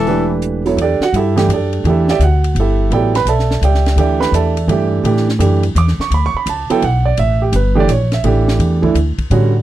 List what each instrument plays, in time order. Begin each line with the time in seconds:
Already playing: upright bass E1, tenor saxophone E3, trumpet A4
0.07 grand piano E3 A3 D4 G4 B4, open hi-hat
0.42 closed hi-hat
0.65 grand piano F#3 B3 E4 A4 C#5, open hi-hat
0.77 upright bass E2, ride
0.81 grand piano D4 G4 A4 D5
1.00 grand piano F#4 F#5, muted upright bass stroke, snare
1.13 upright bass G2, grand piano E4 G4 E5, hi-hat pedal, ride
1.17 grand piano A4
1.36 grand piano E3 A3 D4 G4, snare, ride
1.48 upright bass F#2, hi-hat pedal, ride
1.53 grand piano D4 G4 A4 D5
1.73 ride
1.84 upright bass E2, grand piano E3 A3 D4 G4, ride
1.89 grand piano E4 A4 E5
2.08 grand piano G4 D5 E5 G5, snare
2.19 upright bass D2, grand piano F#5, hi-hat pedal, ride
2.24 grand piano F#4
2.44 ride
2.55 upright bass G1, ride
2.59 grand piano E4 G4 A4 E5
2.90 upright bass A1, grand piano F#3 B3 E4 A4 D5 E5 G5, ride
2.94 grand piano G4
3.15 grand piano B4 B5, snare, ride
3.25 upright bass B1, grand piano A4 D5 E5 A5, hi-hat pedal, ride
3.39 snare
3.51 snare
3.61 upright bass C#2, grand piano G4 D5 E5 G5, hi-hat pedal, ride
3.74 snare
3.86 snare, ride
3.96 upright bass D2, grand piano E3 A3 D4 G4 G5, ride
4.00 grand piano D5 E5
4.20 grand piano B4 B5, snare
4.32 upright bass E2, grand piano A4 D5 E5 A5, hi-hat pedal, ride
4.57 ride
4.67 upright bass G2, grand piano E3 A3 D4 G4 D5 E5 G5, ride
5.04 upright bass A2, grand piano E3 A3 D4 G4, ride
5.17 snare
5.29 snare
5.39 upright bass F#2, grand piano E3 A3 D4 G4, hi-hat pedal, ride
5.63 ride
5.75 upright bass E2, grand piano D6, hi-hat pedal, ride
5.88 snare
5.99 grand piano C#6, muted upright bass stroke, snare
6.10 upright bass D2, grand piano B5, ride
6.26 grand piano C#6
6.34 grand piano B5, muted upright bass stroke
6.46 upright bass C#2, grand piano A5, hi-hat pedal, ride
6.70 grand piano F#3 B3 E4 A4 G5, muted upright bass stroke, ride
6.82 upright bass B1, grand piano F#5, ride
7.05 grand piano D5
7.17 upright bass A1, grand piano E5, ride
7.42 grand piano G4
7.52 upright bass G1, grand piano B4, hi-hat pedal, ride
7.75 grand piano E3 A3 D4 G4
7.80 grand piano D5
7.88 upright bass A#1, grand piano C#5, hi-hat pedal, ride
8.12 grand piano E5, snare, ride
8.24 upright bass A1, grand piano E3 A3 D4 G4, ride
8.48 snare
8.59 upright bass E2, ride
8.82 grand piano E3 A3 D4 E4, kick
8.94 upright bass D2, hi-hat pedal, ride
9.18 muted upright bass stroke, kick, ride
9.30 upright bass A2, grand piano D3 G3 C#4 F#4, ride